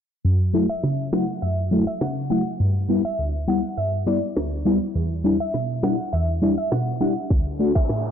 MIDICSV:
0, 0, Header, 1, 5, 480
1, 0, Start_track
1, 0, Tempo, 588235
1, 201, Time_signature, 4, 2, 24, 8
1, 6619, End_track
2, 0, Start_track
2, 0, Title_t, "Synth pluck"
2, 0, Program_c, 0, 84
2, 567, Note_on_c, 0, 76, 81
2, 775, Note_off_c, 0, 76, 0
2, 919, Note_on_c, 0, 78, 77
2, 1127, Note_off_c, 0, 78, 0
2, 1160, Note_on_c, 0, 76, 84
2, 1270, Note_off_c, 0, 76, 0
2, 1527, Note_on_c, 0, 76, 78
2, 1625, Note_off_c, 0, 76, 0
2, 1640, Note_on_c, 0, 78, 80
2, 1750, Note_off_c, 0, 78, 0
2, 1880, Note_on_c, 0, 78, 81
2, 1990, Note_off_c, 0, 78, 0
2, 2488, Note_on_c, 0, 76, 81
2, 2695, Note_off_c, 0, 76, 0
2, 2842, Note_on_c, 0, 78, 81
2, 3048, Note_off_c, 0, 78, 0
2, 3081, Note_on_c, 0, 76, 87
2, 3190, Note_off_c, 0, 76, 0
2, 3321, Note_on_c, 0, 74, 80
2, 3431, Note_off_c, 0, 74, 0
2, 4409, Note_on_c, 0, 76, 83
2, 4616, Note_off_c, 0, 76, 0
2, 4762, Note_on_c, 0, 78, 75
2, 4968, Note_off_c, 0, 78, 0
2, 5000, Note_on_c, 0, 76, 83
2, 5110, Note_off_c, 0, 76, 0
2, 5367, Note_on_c, 0, 76, 80
2, 5465, Note_off_c, 0, 76, 0
2, 5480, Note_on_c, 0, 78, 82
2, 5590, Note_off_c, 0, 78, 0
2, 5719, Note_on_c, 0, 78, 78
2, 5830, Note_off_c, 0, 78, 0
2, 6327, Note_on_c, 0, 76, 82
2, 6535, Note_off_c, 0, 76, 0
2, 6619, End_track
3, 0, Start_track
3, 0, Title_t, "Synth stab"
3, 0, Program_c, 1, 62
3, 201, Note_on_c, 1, 42, 89
3, 436, Note_on_c, 1, 54, 74
3, 441, Note_on_c, 1, 57, 69
3, 446, Note_on_c, 1, 64, 82
3, 540, Note_off_c, 1, 54, 0
3, 542, Note_off_c, 1, 57, 0
3, 545, Note_off_c, 1, 64, 0
3, 563, Note_off_c, 1, 42, 0
3, 681, Note_on_c, 1, 49, 71
3, 917, Note_on_c, 1, 54, 77
3, 921, Note_on_c, 1, 57, 69
3, 926, Note_on_c, 1, 64, 86
3, 1021, Note_off_c, 1, 54, 0
3, 1023, Note_off_c, 1, 57, 0
3, 1025, Note_off_c, 1, 64, 0
3, 1043, Note_off_c, 1, 49, 0
3, 1161, Note_on_c, 1, 42, 71
3, 1397, Note_on_c, 1, 54, 74
3, 1401, Note_on_c, 1, 57, 68
3, 1406, Note_on_c, 1, 64, 81
3, 1500, Note_off_c, 1, 54, 0
3, 1503, Note_off_c, 1, 57, 0
3, 1505, Note_off_c, 1, 64, 0
3, 1523, Note_off_c, 1, 42, 0
3, 1641, Note_on_c, 1, 49, 76
3, 1876, Note_on_c, 1, 54, 74
3, 1880, Note_on_c, 1, 57, 70
3, 1885, Note_on_c, 1, 64, 82
3, 1980, Note_off_c, 1, 54, 0
3, 1982, Note_off_c, 1, 57, 0
3, 1985, Note_off_c, 1, 64, 0
3, 2003, Note_off_c, 1, 49, 0
3, 2121, Note_on_c, 1, 43, 89
3, 2356, Note_on_c, 1, 55, 76
3, 2360, Note_on_c, 1, 59, 71
3, 2365, Note_on_c, 1, 64, 82
3, 2460, Note_off_c, 1, 55, 0
3, 2462, Note_off_c, 1, 59, 0
3, 2464, Note_off_c, 1, 64, 0
3, 2483, Note_off_c, 1, 43, 0
3, 2601, Note_on_c, 1, 38, 69
3, 2837, Note_on_c, 1, 55, 76
3, 2841, Note_on_c, 1, 59, 73
3, 2846, Note_on_c, 1, 64, 84
3, 2940, Note_off_c, 1, 55, 0
3, 2943, Note_off_c, 1, 59, 0
3, 2945, Note_off_c, 1, 64, 0
3, 2963, Note_off_c, 1, 38, 0
3, 3081, Note_on_c, 1, 43, 73
3, 3316, Note_on_c, 1, 55, 72
3, 3321, Note_on_c, 1, 59, 69
3, 3326, Note_on_c, 1, 64, 80
3, 3420, Note_off_c, 1, 55, 0
3, 3423, Note_off_c, 1, 59, 0
3, 3425, Note_off_c, 1, 64, 0
3, 3443, Note_off_c, 1, 43, 0
3, 3561, Note_on_c, 1, 38, 91
3, 3797, Note_on_c, 1, 55, 89
3, 3801, Note_on_c, 1, 59, 80
3, 3806, Note_on_c, 1, 64, 102
3, 3900, Note_off_c, 1, 55, 0
3, 3902, Note_off_c, 1, 59, 0
3, 3905, Note_off_c, 1, 64, 0
3, 3923, Note_off_c, 1, 38, 0
3, 4041, Note_on_c, 1, 40, 88
3, 4276, Note_on_c, 1, 55, 75
3, 4281, Note_on_c, 1, 62, 69
3, 4285, Note_on_c, 1, 64, 81
3, 4380, Note_off_c, 1, 55, 0
3, 4382, Note_off_c, 1, 62, 0
3, 4385, Note_off_c, 1, 64, 0
3, 4403, Note_off_c, 1, 40, 0
3, 4521, Note_on_c, 1, 47, 70
3, 4756, Note_on_c, 1, 55, 75
3, 4760, Note_on_c, 1, 62, 70
3, 4766, Note_on_c, 1, 64, 82
3, 4860, Note_off_c, 1, 55, 0
3, 4862, Note_off_c, 1, 62, 0
3, 4865, Note_off_c, 1, 64, 0
3, 4883, Note_off_c, 1, 47, 0
3, 5001, Note_on_c, 1, 40, 76
3, 5236, Note_on_c, 1, 55, 75
3, 5241, Note_on_c, 1, 62, 71
3, 5245, Note_on_c, 1, 64, 83
3, 5340, Note_off_c, 1, 55, 0
3, 5342, Note_off_c, 1, 62, 0
3, 5345, Note_off_c, 1, 64, 0
3, 5363, Note_off_c, 1, 40, 0
3, 5481, Note_on_c, 1, 47, 76
3, 5716, Note_on_c, 1, 55, 74
3, 5721, Note_on_c, 1, 62, 71
3, 5725, Note_on_c, 1, 64, 85
3, 5820, Note_off_c, 1, 55, 0
3, 5822, Note_off_c, 1, 62, 0
3, 5825, Note_off_c, 1, 64, 0
3, 5843, Note_off_c, 1, 47, 0
3, 5961, Note_on_c, 1, 38, 90
3, 6196, Note_on_c, 1, 57, 75
3, 6201, Note_on_c, 1, 62, 71
3, 6205, Note_on_c, 1, 66, 82
3, 6300, Note_off_c, 1, 57, 0
3, 6302, Note_off_c, 1, 62, 0
3, 6305, Note_off_c, 1, 66, 0
3, 6323, Note_off_c, 1, 38, 0
3, 6441, Note_on_c, 1, 45, 71
3, 6619, Note_off_c, 1, 45, 0
3, 6619, End_track
4, 0, Start_track
4, 0, Title_t, "Riser"
4, 0, Program_c, 2, 103
4, 5960, Note_on_c, 2, 60, 82
4, 6619, Note_off_c, 2, 60, 0
4, 6619, End_track
5, 0, Start_track
5, 0, Title_t, "Drums"
5, 681, Note_on_c, 9, 38, 61
5, 763, Note_off_c, 9, 38, 0
5, 920, Note_on_c, 9, 38, 117
5, 924, Note_on_c, 9, 37, 88
5, 1001, Note_off_c, 9, 38, 0
5, 1006, Note_off_c, 9, 37, 0
5, 1642, Note_on_c, 9, 37, 95
5, 1642, Note_on_c, 9, 38, 112
5, 1646, Note_off_c, 9, 37, 0
5, 1646, Note_on_c, 9, 37, 95
5, 1723, Note_off_c, 9, 38, 0
5, 1728, Note_off_c, 9, 37, 0
5, 3321, Note_on_c, 9, 38, 63
5, 3403, Note_off_c, 9, 38, 0
5, 3562, Note_on_c, 9, 37, 98
5, 3562, Note_on_c, 9, 38, 121
5, 3566, Note_off_c, 9, 37, 0
5, 3566, Note_on_c, 9, 37, 97
5, 3643, Note_off_c, 9, 38, 0
5, 3648, Note_off_c, 9, 37, 0
5, 4521, Note_on_c, 9, 38, 65
5, 4602, Note_off_c, 9, 38, 0
5, 4759, Note_on_c, 9, 38, 114
5, 4764, Note_on_c, 9, 37, 93
5, 4841, Note_off_c, 9, 38, 0
5, 4845, Note_off_c, 9, 37, 0
5, 5482, Note_on_c, 9, 37, 102
5, 5482, Note_on_c, 9, 38, 116
5, 5486, Note_off_c, 9, 37, 0
5, 5486, Note_on_c, 9, 37, 99
5, 5564, Note_off_c, 9, 38, 0
5, 5568, Note_off_c, 9, 37, 0
5, 5960, Note_on_c, 9, 36, 114
5, 6042, Note_off_c, 9, 36, 0
5, 6328, Note_on_c, 9, 36, 93
5, 6410, Note_off_c, 9, 36, 0
5, 6441, Note_on_c, 9, 37, 64
5, 6441, Note_on_c, 9, 38, 65
5, 6523, Note_off_c, 9, 37, 0
5, 6523, Note_off_c, 9, 38, 0
5, 6619, End_track
0, 0, End_of_file